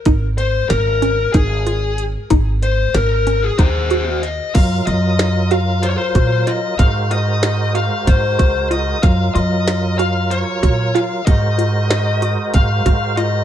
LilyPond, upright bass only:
\new Staff \with { instrumentName = "Upright bass" } { \clef bass \time 7/8 \key aes \mixolydian \tempo 4 = 94 aes,,4 aes,,4 aes,,4. | aes,,4 aes,,4 ees,4. | ges,8 ges,2 bes,8 r8 | aes,2 aes,8 des,4 |
ges,8 ges,2 bes,8 r8 | aes,2 aes,8 aes,4 | }